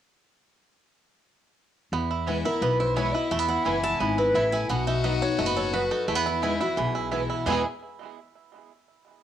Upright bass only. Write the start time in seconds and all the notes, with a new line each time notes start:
1.92 E2
2.62 B1
3.31 E2
3.66 F#1
4.00 G#1
4.34 A1
4.69 B1
5.39 F#1
6.08 E2
6.77 B1
7.46 E2